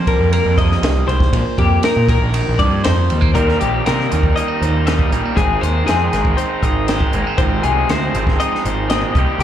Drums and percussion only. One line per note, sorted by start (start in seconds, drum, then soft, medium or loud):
0.07 kick medium
0.07 ride medium
0.33 ride medium
0.58 kick medium
0.58 ride medium
0.72 snare soft
0.83 snare loud
0.83 ride medium
1.09 ride medium
1.20 kick medium
1.20 snare soft
1.33 kick medium
1.33 ride medium
1.58 kick medium
1.58 ride medium
1.83 snare loud
1.83 ride medium
2.09 kick medium
2.09 ride medium
2.34 ride medium
2.59 kick medium
2.59 ride medium
2.84 snare loud
2.84 ride medium
3.10 ride medium
3.22 kick medium
3.35 kick loud
3.35 closed hi-hat medium
3.49 snare soft
3.61 closed hi-hat medium
3.86 snare loud
3.86 closed hi-hat medium
4.00 snare soft
4.12 closed hi-hat medium
4.23 kick medium
4.37 closed hi-hat medium
4.63 closed hi-hat medium
4.87 snare medium
4.87 closed hi-hat medium
4.99 kick medium
5.12 closed hi-hat medium
5.37 kick loud
5.37 closed hi-hat medium
5.63 closed hi-hat medium
5.88 snare medium
5.88 closed hi-hat medium
6.13 snare soft
6.13 closed hi-hat medium
6.25 kick medium
6.38 closed hi-hat medium
6.63 kick medium
6.63 closed hi-hat medium
6.88 snare loud
6.88 closed hi-hat medium
7.00 kick medium
7.13 closed hi-hat medium
7.38 kick loud
7.38 closed hi-hat medium
7.64 closed hi-hat medium
7.89 snare medium
7.89 closed hi-hat medium
8.15 closed hi-hat medium
8.27 kick medium
8.27 snare soft
8.40 closed hi-hat medium
8.55 snare soft
8.65 closed hi-hat medium
8.90 snare loud
8.90 closed hi-hat medium
9.15 kick medium
9.15 closed hi-hat medium